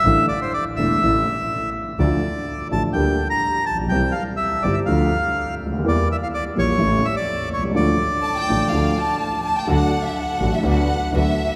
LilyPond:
<<
  \new Staff \with { instrumentName = "Violin section" } { \time 4/4 \key d \minor \tempo 4 = 125 << { r1 | r1 | r1 | r1 |
r4 a''16 g''8. f''8 a''4. | \key d \major r1 | } \\ { r1 | r1 | r1 | r1 |
r2. r8 a''16 g''16 | fis''8. e''16 fis''8. e''16 fis''4 e''4 | } >> }
  \new Staff \with { instrumentName = "Bandoneon" } { \time 4/4 \key d \minor e''8 d''16 c''16 d''8 e''2 r8 | d''4. a''8 g''8. bes''8. a''8 | g''8 f''8 e''8 d''16 e''16 f''4. r8 | d''8 e''16 f''16 d''8 cis''4 e''16 d''8. cis''8 |
d''2. r4 | \key d \major r1 | }
  \new Staff \with { instrumentName = "String section" } { \time 4/4 \key d \minor r1 | r1 | r1 | r1 |
r1 | \key d \major <d' fis' a'>8 r4 <d' fis' a'>8 <d' fis' b'>8 r8 <d' fis' b'>8 r8 | }
  \new Staff \with { instrumentName = "Grand piano" } { \clef bass \time 4/4 \key d \minor <a,, a, d e a e'>8 r4 <e,, e, d e a e'>8 <a,, a, cis e a e'>8 r4. | <d, d f a f'>8 r4 <a,, a, d f a f'>8 <d, d g bes g'>8 r4 r32 a,,32 bes,,32 b,,32 | <c, c e g c' g'>8 r4 <g,, g, e g c' g'>8 <d, d f a f'>8 r4 r32 cis,32 d,32 ees,32 | <e, e g bes g'>8 r4 <bes,, bes, e g bes g'>8 <a,, a, cis e a e'>8 r4 r32 b,,32 c,32 cis,32 |
<d, d f a f'>8 r4 <a,, a, d f a f'>8 <d, d f a f'>8 r4. | \key d \major <d, d fis a fis'>8 r4 <a,, a, d fis a fis'>8 <d, d fis b fis'>8 r8 <d, d fis b fis'>8 r8 | }
  \new Staff \with { instrumentName = "Double bass" } { \clef bass \time 4/4 \key d \minor a,,8 r4 e,,8 a,,8 r4. | d,8 r4 a,,8 d,8 r4 bes,,8 | c,8 r4 g,,8 d,8 r4 d,8 | e,8 r4 bes,,8 a,,8 r4 c,8 |
d,8 r4 a,,8 d,8 r4. | \key d \major d,8 r4 a,,8 d,8 r8 d,8 r8 | }
>>